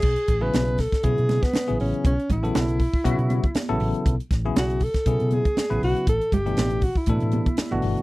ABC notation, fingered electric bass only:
X:1
M:4/4
L:1/16
Q:"Swing 16ths" 1/4=119
K:Bm
V:1 name="Fingered electric bass" clef=bass
B,,, z A,,,2 B,,,3 z B,, B,,2 z2 A,,, A,,, z | B,,, z A,,,2 B,,,3 z B,, B,,2 z2 A,,, A,,, z | B,,, z A,,,2 B,,,3 z B,, B,,2 z2 A,,, B,,, z | A,,, z G,,,2 A,,,3 z A,, A,,2 z2 G,,, G,,, z |]